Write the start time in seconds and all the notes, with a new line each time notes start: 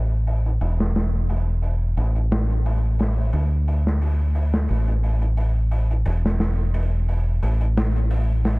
Already playing: A1
0.27 open hi-hat
0.46 closed hi-hat
0.61 E1, open hi-hat
0.80 snare
0.95 snare, open hi-hat
1.29 open hi-hat
1.62 open hi-hat
1.97 A1, open hi-hat
2.15 closed hi-hat
2.31 snare, open hi-hat
2.50 closed hi-hat
2.66 open hi-hat
2.99 snare, open hi-hat
3.33 D2, open hi-hat
3.68 open hi-hat
3.87 snare
4.01 open hi-hat
4.35 open hi-hat
4.54 snare
4.68 A1, open hi-hat
4.88 closed hi-hat
5.03 open hi-hat
5.22 closed hi-hat
5.37 open hi-hat
5.71 open hi-hat
5.91 closed hi-hat
6.06 E1, open hi-hat
6.26 snare
6.40 snare, open hi-hat
6.74 open hi-hat
7.08 open hi-hat
7.43 A1, open hi-hat
7.61 closed hi-hat
7.77 snare, open hi-hat
7.96 closed hi-hat
8.11 open hi-hat
8.45 snare, open hi-hat